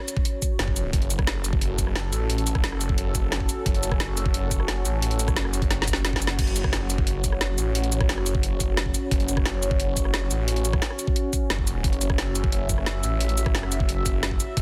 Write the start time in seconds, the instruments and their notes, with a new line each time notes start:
Already playing: analog synth pad C#4 F#4 C#5
0.08 closed hi-hat, cabasa
0.17 kick
0.25 closed hi-hat
0.42 kick, closed hi-hat, cabasa
0.59 detuned saw bass F#1, snare, closed hi-hat
0.68 kick
0.76 closed hi-hat, cabasa
0.93 detuned saw bass F#1, analog synth pad A4, kick, closed hi-hat
1.02 closed hi-hat
1.10 detuned saw bass F#1, closed hi-hat, cabasa
1.19 kick, cross-stick
1.27 snare, closed hi-hat
1.44 closed hi-hat, cabasa
1.53 kick
1.61 closed hi-hat
1.78 kick, closed hi-hat, cabasa
1.87 cross-stick
1.96 detuned saw bass F#1, snare, closed hi-hat
2.13 detuned saw bass A1, closed hi-hat, cabasa
2.30 closed hi-hat
2.38 closed hi-hat
2.47 closed hi-hat, cabasa
2.55 kick, cross-stick
2.64 detuned saw bass F#1, snare, closed hi-hat
2.72 cross-stick
2.81 closed hi-hat, cabasa
2.89 kick
2.98 closed hi-hat
3.15 kick, closed hi-hat, cabasa
3.32 snare, closed hi-hat
3.40 kick
3.49 closed hi-hat, cabasa
3.66 detuned saw bass F#1, kick, closed hi-hat
3.75 closed hi-hat
3.83 detuned saw bass F#1, closed hi-hat, cabasa
3.92 kick, cross-stick
4.00 snare, closed hi-hat
4.17 closed hi-hat, cabasa
4.26 kick
4.34 closed hi-hat
4.51 kick, closed hi-hat, cabasa
4.60 cross-stick
4.68 detuned saw bass F#1, snare, closed hi-hat
4.85 detuned saw bass A1, closed hi-hat, cabasa
5.02 closed hi-hat
5.11 closed hi-hat
5.19 closed hi-hat, cabasa
5.28 kick, cross-stick, cabasa
5.36 detuned saw bass F#1, snare, closed hi-hat
5.45 cross-stick
5.54 closed hi-hat, cabasa
5.62 kick, closed hi-hat
5.71 snare, closed hi-hat
5.82 snare
5.88 kick, closed hi-hat, cabasa
5.93 snare, closed hi-hat
6.05 snare, closed hi-hat
6.13 kick, snare
6.22 closed hi-hat, cabasa
6.27 snare, closed hi-hat
6.39 detuned saw bass F#1, analog synth pad C#5, kick, closed hi-hat, crash
6.47 closed hi-hat
6.56 detuned saw bass F#1, closed hi-hat, cabasa
6.64 kick, cross-stick
6.73 snare, closed hi-hat
6.90 closed hi-hat, cabasa
6.98 kick
7.07 closed hi-hat
7.24 kick, closed hi-hat, cabasa
7.32 cross-stick
7.41 detuned saw bass F#1, snare, closed hi-hat
7.58 detuned saw bass A1, closed hi-hat, cabasa
7.75 closed hi-hat
7.84 closed hi-hat
7.92 closed hi-hat, cabasa
8.01 kick, cross-stick
8.09 detuned saw bass F#1, snare, closed hi-hat
8.18 cross-stick
8.26 closed hi-hat, cabasa
8.35 kick
8.43 closed hi-hat
8.60 kick, closed hi-hat, cabasa
8.77 snare, closed hi-hat
8.86 kick
8.94 closed hi-hat, cabasa
9.11 detuned saw bass F#1, kick, closed hi-hat
9.20 closed hi-hat
9.28 detuned saw bass F#1, closed hi-hat, cabasa
9.37 kick, cross-stick
9.46 snare, closed hi-hat
9.63 closed hi-hat, cabasa
9.71 kick
9.80 closed hi-hat
9.97 kick, closed hi-hat, cabasa
10.05 cross-stick
10.14 detuned saw bass F#1, snare, closed hi-hat
10.31 detuned saw bass A1, closed hi-hat, cabasa
10.48 closed hi-hat
10.56 closed hi-hat
10.65 closed hi-hat, cabasa
10.73 kick, cross-stick
10.82 snare, closed hi-hat
10.90 cross-stick
10.99 closed hi-hat, cabasa
11.07 kick
11.16 closed hi-hat
11.33 kick, closed hi-hat, cabasa
11.50 detuned saw bass F#1, snare, closed hi-hat
11.59 kick
11.67 closed hi-hat, cabasa
11.84 detuned saw bass F#1, analog synth pad E5, kick, closed hi-hat
11.93 closed hi-hat
12.01 detuned saw bass F#1, closed hi-hat, cabasa
12.10 kick, cross-stick
12.18 snare, closed hi-hat
12.35 closed hi-hat, cabasa
12.44 kick
12.52 closed hi-hat
12.69 kick, closed hi-hat, cabasa
12.78 cross-stick
12.86 detuned saw bass F#1, snare, closed hi-hat
13.03 detuned saw bass A1, closed hi-hat, cabasa
13.21 closed hi-hat
13.29 closed hi-hat
13.38 closed hi-hat, cabasa
13.46 kick, cross-stick
13.55 detuned saw bass F#1, snare, closed hi-hat
13.63 cross-stick
13.72 closed hi-hat, cabasa
13.80 kick
13.89 closed hi-hat
14.06 kick, closed hi-hat, cabasa
14.23 snare, closed hi-hat
14.31 kick
14.40 closed hi-hat, cabasa
14.57 detuned saw bass F#1, kick, closed hi-hat